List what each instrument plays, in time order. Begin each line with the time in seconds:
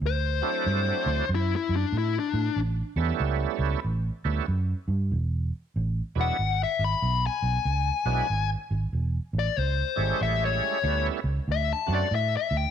0.01 fingered electric bass D2
0.06 lead electric guitar C5
0.42 tonewheel organ F#3 A3 C4 D4 E4
0.66 fingered electric bass G2
1.06 fingered electric bass D2
1.29 fingered electric bass F#2
1.35 lead electric guitar E4
1.56 lead electric guitar E4
1.69 fingered electric bass F#2
1.76 lead electric guitar D4
1.92 fingered electric bass A2
1.98 lead electric guitar E4
2.20 lead electric guitar D4
2.34 fingered electric bass A2
2.56 fingered electric bass A1
2.96 fingered electric bass E2, tonewheel organ G3 A3 B3 C#4 E4
3.20 fingered electric bass C#2
3.59 fingered electric bass C#2
3.84 fingered electric bass A1
4.24 fingered electric bass D2, tonewheel organ G3 A3 B3 C#4 E4
4.48 fingered electric bass F#2
4.88 fingered electric bass G2
5.12 fingered electric bass E1
5.76 fingered electric bass A1
6.15 fingered electric bass E1, tonewheel organ F#3 G#3 B3 D4 E4
6.21 lead electric guitar F#5
6.39 fingered electric bass G#1
6.63 lead electric guitar E5
6.79 fingered electric bass G#1
6.84 lead electric guitar B5
7.02 fingered electric bass B1
7.27 lead electric guitar G#5
7.42 fingered electric bass B1
7.65 fingered electric bass C#2
8.05 fingered electric bass B1, tonewheel organ F#3 G#3 B3 D4 E4
8.30 fingered electric bass G#1
8.71 fingered electric bass G#1
8.93 fingered electric bass E1
9.33 fingered electric bass A1
9.39 lead electric guitar D5
9.57 fingered electric bass C#2, lead electric guitar C5
9.96 fingered electric bass G#1, tonewheel organ G3 G#3 A3 C#4 E4
10.21 fingered electric bass A1, lead electric guitar E5
10.45 lead electric guitar C#5
10.83 fingered electric bass D2, tonewheel organ G3 A3 B3 C#4 E4
11.24 fingered electric bass C#2
11.48 fingered electric bass D2, lead electric guitar E5
11.73 lead electric guitar A5
11.87 fingered electric bass F#2, tonewheel organ F#3 A3 C4 D4 F#4
11.95 lead electric guitar D5
12.11 fingered electric bass A2
12.15 lead electric guitar E5
12.37 lead electric guitar E5
12.51 fingered electric bass D2
12.57 lead electric guitar G5